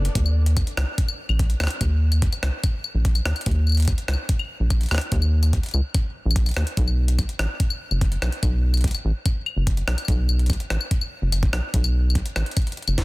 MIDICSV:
0, 0, Header, 1, 4, 480
1, 0, Start_track
1, 0, Key_signature, -6, "minor"
1, 0, Tempo, 413793
1, 177, Time_signature, 4, 2, 24, 8
1, 15130, End_track
2, 0, Start_track
2, 0, Title_t, "String machine"
2, 0, Program_c, 0, 50
2, 0, Note_on_c, 0, 59, 88
2, 0, Note_on_c, 0, 62, 82
2, 0, Note_on_c, 0, 69, 78
2, 0, Note_on_c, 0, 74, 102
2, 130, Note_off_c, 0, 59, 0
2, 130, Note_off_c, 0, 62, 0
2, 131, Note_off_c, 0, 69, 0
2, 139, Note_off_c, 0, 74, 0
2, 15130, End_track
3, 0, Start_track
3, 0, Title_t, "Analog synth bass"
3, 0, Program_c, 1, 38
3, 178, Note_on_c, 1, 39, 102
3, 717, Note_off_c, 1, 39, 0
3, 896, Note_on_c, 1, 37, 94
3, 979, Note_off_c, 1, 37, 0
3, 1498, Note_on_c, 1, 34, 78
3, 1798, Note_off_c, 1, 34, 0
3, 1858, Note_on_c, 1, 39, 100
3, 1940, Note_off_c, 1, 39, 0
3, 2098, Note_on_c, 1, 39, 101
3, 2637, Note_off_c, 1, 39, 0
3, 2817, Note_on_c, 1, 37, 96
3, 2900, Note_off_c, 1, 37, 0
3, 3417, Note_on_c, 1, 34, 82
3, 3717, Note_off_c, 1, 34, 0
3, 3776, Note_on_c, 1, 39, 99
3, 3859, Note_off_c, 1, 39, 0
3, 4018, Note_on_c, 1, 39, 103
3, 4558, Note_off_c, 1, 39, 0
3, 4735, Note_on_c, 1, 37, 91
3, 4819, Note_off_c, 1, 37, 0
3, 5338, Note_on_c, 1, 34, 80
3, 5637, Note_off_c, 1, 34, 0
3, 5697, Note_on_c, 1, 39, 99
3, 5780, Note_off_c, 1, 39, 0
3, 5938, Note_on_c, 1, 39, 104
3, 6477, Note_off_c, 1, 39, 0
3, 6656, Note_on_c, 1, 37, 92
3, 6739, Note_off_c, 1, 37, 0
3, 7256, Note_on_c, 1, 34, 85
3, 7556, Note_off_c, 1, 34, 0
3, 7616, Note_on_c, 1, 39, 103
3, 7699, Note_off_c, 1, 39, 0
3, 7856, Note_on_c, 1, 35, 103
3, 8397, Note_off_c, 1, 35, 0
3, 8577, Note_on_c, 1, 33, 98
3, 8660, Note_off_c, 1, 33, 0
3, 9176, Note_on_c, 1, 30, 77
3, 9477, Note_off_c, 1, 30, 0
3, 9534, Note_on_c, 1, 35, 103
3, 9618, Note_off_c, 1, 35, 0
3, 9776, Note_on_c, 1, 35, 102
3, 10316, Note_off_c, 1, 35, 0
3, 10496, Note_on_c, 1, 33, 95
3, 10579, Note_off_c, 1, 33, 0
3, 11095, Note_on_c, 1, 30, 81
3, 11396, Note_off_c, 1, 30, 0
3, 11456, Note_on_c, 1, 35, 101
3, 11539, Note_off_c, 1, 35, 0
3, 11697, Note_on_c, 1, 35, 106
3, 12237, Note_off_c, 1, 35, 0
3, 12417, Note_on_c, 1, 33, 93
3, 12499, Note_off_c, 1, 33, 0
3, 13016, Note_on_c, 1, 30, 81
3, 13317, Note_off_c, 1, 30, 0
3, 13375, Note_on_c, 1, 35, 105
3, 13459, Note_off_c, 1, 35, 0
3, 13617, Note_on_c, 1, 35, 108
3, 14157, Note_off_c, 1, 35, 0
3, 14337, Note_on_c, 1, 33, 96
3, 14420, Note_off_c, 1, 33, 0
3, 14937, Note_on_c, 1, 30, 85
3, 15130, Note_off_c, 1, 30, 0
3, 15130, End_track
4, 0, Start_track
4, 0, Title_t, "Drums"
4, 58, Note_on_c, 9, 42, 49
4, 174, Note_off_c, 9, 42, 0
4, 177, Note_on_c, 9, 36, 118
4, 178, Note_on_c, 9, 42, 76
4, 293, Note_off_c, 9, 36, 0
4, 294, Note_off_c, 9, 42, 0
4, 298, Note_on_c, 9, 75, 53
4, 414, Note_off_c, 9, 75, 0
4, 537, Note_on_c, 9, 42, 53
4, 653, Note_off_c, 9, 42, 0
4, 657, Note_on_c, 9, 36, 101
4, 657, Note_on_c, 9, 42, 72
4, 657, Note_on_c, 9, 75, 76
4, 773, Note_off_c, 9, 36, 0
4, 773, Note_off_c, 9, 42, 0
4, 773, Note_off_c, 9, 75, 0
4, 778, Note_on_c, 9, 42, 36
4, 894, Note_off_c, 9, 42, 0
4, 898, Note_on_c, 9, 37, 116
4, 898, Note_on_c, 9, 75, 55
4, 1014, Note_off_c, 9, 37, 0
4, 1014, Note_off_c, 9, 75, 0
4, 1137, Note_on_c, 9, 36, 117
4, 1138, Note_on_c, 9, 42, 81
4, 1253, Note_off_c, 9, 36, 0
4, 1254, Note_off_c, 9, 42, 0
4, 1258, Note_on_c, 9, 75, 78
4, 1374, Note_off_c, 9, 75, 0
4, 1498, Note_on_c, 9, 75, 52
4, 1614, Note_off_c, 9, 75, 0
4, 1617, Note_on_c, 9, 42, 80
4, 1618, Note_on_c, 9, 36, 108
4, 1733, Note_off_c, 9, 42, 0
4, 1734, Note_off_c, 9, 36, 0
4, 1737, Note_on_c, 9, 42, 35
4, 1853, Note_off_c, 9, 42, 0
4, 1857, Note_on_c, 9, 37, 107
4, 1857, Note_on_c, 9, 75, 81
4, 1897, Note_off_c, 9, 37, 0
4, 1897, Note_on_c, 9, 37, 87
4, 1938, Note_off_c, 9, 37, 0
4, 1938, Note_on_c, 9, 37, 72
4, 1973, Note_off_c, 9, 75, 0
4, 1977, Note_on_c, 9, 42, 51
4, 2054, Note_off_c, 9, 37, 0
4, 2093, Note_off_c, 9, 42, 0
4, 2097, Note_on_c, 9, 42, 83
4, 2097, Note_on_c, 9, 75, 49
4, 2098, Note_on_c, 9, 36, 106
4, 2213, Note_off_c, 9, 42, 0
4, 2213, Note_off_c, 9, 75, 0
4, 2214, Note_off_c, 9, 36, 0
4, 2457, Note_on_c, 9, 42, 53
4, 2457, Note_on_c, 9, 75, 81
4, 2573, Note_off_c, 9, 42, 0
4, 2573, Note_off_c, 9, 75, 0
4, 2577, Note_on_c, 9, 42, 75
4, 2578, Note_on_c, 9, 36, 126
4, 2693, Note_off_c, 9, 42, 0
4, 2694, Note_off_c, 9, 36, 0
4, 2697, Note_on_c, 9, 42, 36
4, 2697, Note_on_c, 9, 75, 51
4, 2813, Note_off_c, 9, 42, 0
4, 2813, Note_off_c, 9, 75, 0
4, 2816, Note_on_c, 9, 37, 121
4, 2932, Note_off_c, 9, 37, 0
4, 3057, Note_on_c, 9, 42, 80
4, 3057, Note_on_c, 9, 75, 75
4, 3058, Note_on_c, 9, 36, 127
4, 3173, Note_off_c, 9, 42, 0
4, 3173, Note_off_c, 9, 75, 0
4, 3174, Note_off_c, 9, 36, 0
4, 3296, Note_on_c, 9, 75, 50
4, 3412, Note_off_c, 9, 75, 0
4, 3537, Note_on_c, 9, 42, 81
4, 3538, Note_on_c, 9, 36, 106
4, 3653, Note_off_c, 9, 42, 0
4, 3654, Note_off_c, 9, 36, 0
4, 3656, Note_on_c, 9, 42, 34
4, 3656, Note_on_c, 9, 75, 73
4, 3772, Note_off_c, 9, 42, 0
4, 3772, Note_off_c, 9, 75, 0
4, 3776, Note_on_c, 9, 37, 119
4, 3892, Note_off_c, 9, 37, 0
4, 3896, Note_on_c, 9, 42, 45
4, 3896, Note_on_c, 9, 75, 48
4, 3956, Note_off_c, 9, 42, 0
4, 3956, Note_on_c, 9, 42, 39
4, 4012, Note_off_c, 9, 75, 0
4, 4016, Note_off_c, 9, 42, 0
4, 4016, Note_on_c, 9, 42, 80
4, 4017, Note_on_c, 9, 36, 117
4, 4076, Note_off_c, 9, 42, 0
4, 4076, Note_on_c, 9, 42, 28
4, 4133, Note_off_c, 9, 36, 0
4, 4192, Note_off_c, 9, 42, 0
4, 4256, Note_on_c, 9, 75, 33
4, 4285, Note_off_c, 9, 75, 0
4, 4285, Note_on_c, 9, 75, 43
4, 4316, Note_off_c, 9, 75, 0
4, 4316, Note_on_c, 9, 75, 52
4, 4346, Note_off_c, 9, 75, 0
4, 4346, Note_on_c, 9, 75, 62
4, 4377, Note_on_c, 9, 42, 48
4, 4406, Note_off_c, 9, 42, 0
4, 4406, Note_on_c, 9, 42, 40
4, 4436, Note_off_c, 9, 42, 0
4, 4436, Note_on_c, 9, 42, 35
4, 4462, Note_off_c, 9, 75, 0
4, 4466, Note_off_c, 9, 42, 0
4, 4466, Note_on_c, 9, 42, 27
4, 4496, Note_off_c, 9, 42, 0
4, 4496, Note_on_c, 9, 42, 75
4, 4496, Note_on_c, 9, 75, 50
4, 4497, Note_on_c, 9, 36, 122
4, 4612, Note_off_c, 9, 42, 0
4, 4612, Note_off_c, 9, 75, 0
4, 4613, Note_off_c, 9, 36, 0
4, 4616, Note_on_c, 9, 42, 38
4, 4732, Note_off_c, 9, 42, 0
4, 4736, Note_on_c, 9, 37, 122
4, 4797, Note_on_c, 9, 75, 75
4, 4852, Note_off_c, 9, 37, 0
4, 4913, Note_off_c, 9, 75, 0
4, 4976, Note_on_c, 9, 42, 81
4, 4977, Note_on_c, 9, 36, 111
4, 5092, Note_off_c, 9, 42, 0
4, 5093, Note_off_c, 9, 36, 0
4, 5096, Note_on_c, 9, 75, 48
4, 5212, Note_off_c, 9, 75, 0
4, 5457, Note_on_c, 9, 36, 123
4, 5457, Note_on_c, 9, 42, 74
4, 5457, Note_on_c, 9, 75, 72
4, 5573, Note_off_c, 9, 36, 0
4, 5573, Note_off_c, 9, 42, 0
4, 5573, Note_off_c, 9, 75, 0
4, 5577, Note_on_c, 9, 42, 32
4, 5607, Note_off_c, 9, 42, 0
4, 5607, Note_on_c, 9, 42, 25
4, 5637, Note_off_c, 9, 42, 0
4, 5637, Note_on_c, 9, 42, 22
4, 5667, Note_off_c, 9, 42, 0
4, 5667, Note_on_c, 9, 42, 19
4, 5698, Note_on_c, 9, 37, 55
4, 5698, Note_on_c, 9, 75, 48
4, 5737, Note_off_c, 9, 37, 0
4, 5737, Note_on_c, 9, 37, 71
4, 5758, Note_off_c, 9, 42, 0
4, 5758, Note_on_c, 9, 42, 10
4, 5776, Note_off_c, 9, 37, 0
4, 5776, Note_on_c, 9, 37, 87
4, 5786, Note_off_c, 9, 42, 0
4, 5786, Note_on_c, 9, 42, 9
4, 5814, Note_off_c, 9, 75, 0
4, 5816, Note_off_c, 9, 42, 0
4, 5816, Note_on_c, 9, 42, 47
4, 5892, Note_off_c, 9, 37, 0
4, 5932, Note_off_c, 9, 42, 0
4, 5936, Note_on_c, 9, 42, 77
4, 5937, Note_on_c, 9, 36, 127
4, 6052, Note_off_c, 9, 42, 0
4, 6053, Note_off_c, 9, 36, 0
4, 6055, Note_on_c, 9, 75, 68
4, 6171, Note_off_c, 9, 75, 0
4, 6296, Note_on_c, 9, 42, 53
4, 6296, Note_on_c, 9, 75, 51
4, 6412, Note_off_c, 9, 42, 0
4, 6412, Note_off_c, 9, 75, 0
4, 6416, Note_on_c, 9, 42, 72
4, 6417, Note_on_c, 9, 36, 109
4, 6532, Note_off_c, 9, 42, 0
4, 6533, Note_off_c, 9, 36, 0
4, 6535, Note_on_c, 9, 42, 35
4, 6566, Note_off_c, 9, 42, 0
4, 6566, Note_on_c, 9, 42, 27
4, 6595, Note_off_c, 9, 42, 0
4, 6595, Note_on_c, 9, 42, 23
4, 6626, Note_off_c, 9, 42, 0
4, 6626, Note_on_c, 9, 42, 18
4, 6656, Note_on_c, 9, 75, 74
4, 6742, Note_off_c, 9, 42, 0
4, 6772, Note_off_c, 9, 75, 0
4, 6895, Note_on_c, 9, 42, 76
4, 6895, Note_on_c, 9, 75, 51
4, 6897, Note_on_c, 9, 36, 124
4, 7011, Note_off_c, 9, 42, 0
4, 7011, Note_off_c, 9, 75, 0
4, 7013, Note_off_c, 9, 36, 0
4, 7315, Note_on_c, 9, 75, 75
4, 7376, Note_on_c, 9, 36, 121
4, 7377, Note_on_c, 9, 42, 74
4, 7431, Note_off_c, 9, 75, 0
4, 7492, Note_off_c, 9, 36, 0
4, 7493, Note_off_c, 9, 42, 0
4, 7496, Note_on_c, 9, 42, 31
4, 7496, Note_on_c, 9, 75, 49
4, 7526, Note_off_c, 9, 42, 0
4, 7526, Note_on_c, 9, 42, 27
4, 7556, Note_off_c, 9, 42, 0
4, 7556, Note_on_c, 9, 42, 22
4, 7587, Note_off_c, 9, 42, 0
4, 7587, Note_on_c, 9, 42, 17
4, 7612, Note_off_c, 9, 75, 0
4, 7616, Note_on_c, 9, 37, 111
4, 7646, Note_off_c, 9, 42, 0
4, 7646, Note_on_c, 9, 42, 12
4, 7676, Note_off_c, 9, 42, 0
4, 7676, Note_on_c, 9, 42, 9
4, 7706, Note_off_c, 9, 42, 0
4, 7706, Note_on_c, 9, 42, 8
4, 7732, Note_off_c, 9, 37, 0
4, 7736, Note_off_c, 9, 42, 0
4, 7736, Note_on_c, 9, 42, 49
4, 7852, Note_off_c, 9, 42, 0
4, 7855, Note_on_c, 9, 42, 75
4, 7856, Note_on_c, 9, 36, 115
4, 7971, Note_off_c, 9, 42, 0
4, 7972, Note_off_c, 9, 36, 0
4, 7976, Note_on_c, 9, 75, 49
4, 8092, Note_off_c, 9, 75, 0
4, 8215, Note_on_c, 9, 42, 49
4, 8331, Note_off_c, 9, 42, 0
4, 8335, Note_on_c, 9, 42, 76
4, 8335, Note_on_c, 9, 75, 72
4, 8336, Note_on_c, 9, 36, 105
4, 8451, Note_off_c, 9, 42, 0
4, 8451, Note_off_c, 9, 75, 0
4, 8452, Note_off_c, 9, 36, 0
4, 8457, Note_on_c, 9, 42, 33
4, 8573, Note_off_c, 9, 42, 0
4, 8576, Note_on_c, 9, 37, 119
4, 8576, Note_on_c, 9, 75, 49
4, 8692, Note_off_c, 9, 37, 0
4, 8692, Note_off_c, 9, 75, 0
4, 8816, Note_on_c, 9, 36, 120
4, 8816, Note_on_c, 9, 42, 71
4, 8932, Note_off_c, 9, 36, 0
4, 8932, Note_off_c, 9, 42, 0
4, 8936, Note_on_c, 9, 75, 72
4, 9052, Note_off_c, 9, 75, 0
4, 9177, Note_on_c, 9, 75, 48
4, 9293, Note_off_c, 9, 75, 0
4, 9296, Note_on_c, 9, 36, 111
4, 9296, Note_on_c, 9, 42, 72
4, 9412, Note_off_c, 9, 36, 0
4, 9412, Note_off_c, 9, 42, 0
4, 9416, Note_on_c, 9, 42, 32
4, 9532, Note_off_c, 9, 42, 0
4, 9536, Note_on_c, 9, 37, 117
4, 9536, Note_on_c, 9, 75, 72
4, 9652, Note_off_c, 9, 37, 0
4, 9652, Note_off_c, 9, 75, 0
4, 9656, Note_on_c, 9, 42, 48
4, 9772, Note_off_c, 9, 42, 0
4, 9776, Note_on_c, 9, 36, 104
4, 9776, Note_on_c, 9, 42, 71
4, 9776, Note_on_c, 9, 75, 52
4, 9892, Note_off_c, 9, 36, 0
4, 9892, Note_off_c, 9, 42, 0
4, 9892, Note_off_c, 9, 75, 0
4, 10136, Note_on_c, 9, 42, 21
4, 10136, Note_on_c, 9, 75, 77
4, 10176, Note_off_c, 9, 42, 0
4, 10176, Note_on_c, 9, 42, 27
4, 10216, Note_off_c, 9, 42, 0
4, 10216, Note_on_c, 9, 42, 30
4, 10252, Note_off_c, 9, 75, 0
4, 10256, Note_off_c, 9, 42, 0
4, 10256, Note_on_c, 9, 36, 120
4, 10256, Note_on_c, 9, 42, 70
4, 10296, Note_off_c, 9, 42, 0
4, 10296, Note_on_c, 9, 42, 39
4, 10336, Note_off_c, 9, 42, 0
4, 10336, Note_on_c, 9, 42, 42
4, 10372, Note_off_c, 9, 36, 0
4, 10376, Note_off_c, 9, 42, 0
4, 10376, Note_on_c, 9, 42, 34
4, 10376, Note_on_c, 9, 75, 52
4, 10492, Note_off_c, 9, 42, 0
4, 10492, Note_off_c, 9, 75, 0
4, 10736, Note_on_c, 9, 36, 121
4, 10736, Note_on_c, 9, 42, 75
4, 10736, Note_on_c, 9, 75, 76
4, 10852, Note_off_c, 9, 36, 0
4, 10852, Note_off_c, 9, 42, 0
4, 10852, Note_off_c, 9, 75, 0
4, 10976, Note_on_c, 9, 75, 49
4, 11092, Note_off_c, 9, 75, 0
4, 11216, Note_on_c, 9, 36, 97
4, 11216, Note_on_c, 9, 42, 72
4, 11332, Note_off_c, 9, 36, 0
4, 11332, Note_off_c, 9, 42, 0
4, 11336, Note_on_c, 9, 42, 33
4, 11452, Note_off_c, 9, 42, 0
4, 11456, Note_on_c, 9, 37, 110
4, 11572, Note_off_c, 9, 37, 0
4, 11576, Note_on_c, 9, 42, 48
4, 11576, Note_on_c, 9, 75, 48
4, 11656, Note_off_c, 9, 75, 0
4, 11656, Note_on_c, 9, 75, 37
4, 11692, Note_off_c, 9, 42, 0
4, 11696, Note_on_c, 9, 36, 110
4, 11696, Note_on_c, 9, 42, 79
4, 11737, Note_off_c, 9, 75, 0
4, 11737, Note_on_c, 9, 75, 32
4, 11812, Note_off_c, 9, 36, 0
4, 11812, Note_off_c, 9, 42, 0
4, 11853, Note_off_c, 9, 75, 0
4, 11936, Note_on_c, 9, 75, 79
4, 12052, Note_off_c, 9, 75, 0
4, 12057, Note_on_c, 9, 42, 21
4, 12136, Note_off_c, 9, 42, 0
4, 12136, Note_on_c, 9, 42, 31
4, 12176, Note_off_c, 9, 42, 0
4, 12176, Note_on_c, 9, 42, 73
4, 12176, Note_on_c, 9, 75, 54
4, 12177, Note_on_c, 9, 36, 114
4, 12216, Note_off_c, 9, 42, 0
4, 12216, Note_on_c, 9, 42, 37
4, 12292, Note_off_c, 9, 75, 0
4, 12293, Note_off_c, 9, 36, 0
4, 12298, Note_off_c, 9, 42, 0
4, 12298, Note_on_c, 9, 42, 35
4, 12414, Note_off_c, 9, 42, 0
4, 12416, Note_on_c, 9, 37, 111
4, 12532, Note_off_c, 9, 37, 0
4, 12536, Note_on_c, 9, 75, 77
4, 12652, Note_off_c, 9, 75, 0
4, 12656, Note_on_c, 9, 42, 74
4, 12657, Note_on_c, 9, 36, 104
4, 12772, Note_off_c, 9, 42, 0
4, 12773, Note_off_c, 9, 36, 0
4, 12776, Note_on_c, 9, 75, 55
4, 12892, Note_off_c, 9, 75, 0
4, 13136, Note_on_c, 9, 42, 76
4, 13136, Note_on_c, 9, 75, 82
4, 13252, Note_off_c, 9, 42, 0
4, 13252, Note_off_c, 9, 75, 0
4, 13256, Note_on_c, 9, 42, 35
4, 13257, Note_on_c, 9, 36, 107
4, 13372, Note_off_c, 9, 42, 0
4, 13373, Note_off_c, 9, 36, 0
4, 13376, Note_on_c, 9, 37, 102
4, 13492, Note_off_c, 9, 37, 0
4, 13616, Note_on_c, 9, 42, 82
4, 13617, Note_on_c, 9, 36, 115
4, 13732, Note_off_c, 9, 42, 0
4, 13733, Note_off_c, 9, 36, 0
4, 13736, Note_on_c, 9, 42, 37
4, 13736, Note_on_c, 9, 75, 77
4, 13852, Note_off_c, 9, 42, 0
4, 13852, Note_off_c, 9, 75, 0
4, 14036, Note_on_c, 9, 75, 53
4, 14097, Note_on_c, 9, 36, 102
4, 14097, Note_on_c, 9, 42, 74
4, 14152, Note_off_c, 9, 75, 0
4, 14213, Note_off_c, 9, 36, 0
4, 14213, Note_off_c, 9, 42, 0
4, 14217, Note_on_c, 9, 42, 36
4, 14333, Note_off_c, 9, 42, 0
4, 14337, Note_on_c, 9, 37, 110
4, 14337, Note_on_c, 9, 75, 82
4, 14453, Note_off_c, 9, 37, 0
4, 14453, Note_off_c, 9, 75, 0
4, 14457, Note_on_c, 9, 42, 34
4, 14516, Note_off_c, 9, 42, 0
4, 14516, Note_on_c, 9, 42, 28
4, 14577, Note_off_c, 9, 42, 0
4, 14577, Note_on_c, 9, 42, 79
4, 14577, Note_on_c, 9, 75, 55
4, 14578, Note_on_c, 9, 36, 121
4, 14636, Note_off_c, 9, 42, 0
4, 14636, Note_on_c, 9, 42, 19
4, 14693, Note_off_c, 9, 75, 0
4, 14694, Note_off_c, 9, 36, 0
4, 14696, Note_off_c, 9, 42, 0
4, 14696, Note_on_c, 9, 42, 35
4, 14756, Note_off_c, 9, 42, 0
4, 14756, Note_on_c, 9, 42, 29
4, 14816, Note_off_c, 9, 42, 0
4, 14816, Note_on_c, 9, 42, 24
4, 14876, Note_off_c, 9, 42, 0
4, 14876, Note_on_c, 9, 42, 19
4, 14936, Note_off_c, 9, 42, 0
4, 14936, Note_on_c, 9, 42, 36
4, 14936, Note_on_c, 9, 75, 86
4, 15052, Note_off_c, 9, 42, 0
4, 15052, Note_off_c, 9, 75, 0
4, 15055, Note_on_c, 9, 38, 69
4, 15055, Note_on_c, 9, 42, 80
4, 15058, Note_on_c, 9, 36, 107
4, 15130, Note_off_c, 9, 36, 0
4, 15130, Note_off_c, 9, 38, 0
4, 15130, Note_off_c, 9, 42, 0
4, 15130, End_track
0, 0, End_of_file